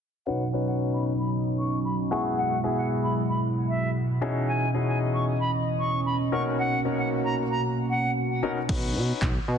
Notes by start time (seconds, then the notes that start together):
0.27 B2 F#3 C#4 D#4 F#4 B4 F#5
0.53 C#4 D#4 F#4 B4
0.66 F#5
0.93 B5
1.19 B5
1.59 C#6
1.85 B5
2.11 B2 G#3 B3 E4 F#4 G#4 C#6
2.38 F#5
2.64 B3 E4 F#4 G#4
2.77 F#5
3.03 B5
3.30 B5
3.69 E5
4.21 B2 E3 C#4 D#4 E4 G#4 D#5
4.48 G#5
4.74 B2 C#4 D#4 E4 G#4
4.88 G#5
5.14 C#6
5.40 B5
5.80 C#6
6.06 B5
6.32 B2 A#3 C#4 D#4 F#4 A#4 C#6
6.59 F#5
6.85 B2 C#4 D#4 F#4 A#4
6.98 F#5
7.24 A#5
7.51 A#5
7.90 F#5
8.43 B2 C#4 D#4 F#4 A#4
8.69 B1 C#4 D#4 F#4 B4, kick, crash
8.95 B2
9.22 B1, kick, snare, clap
9.48 B2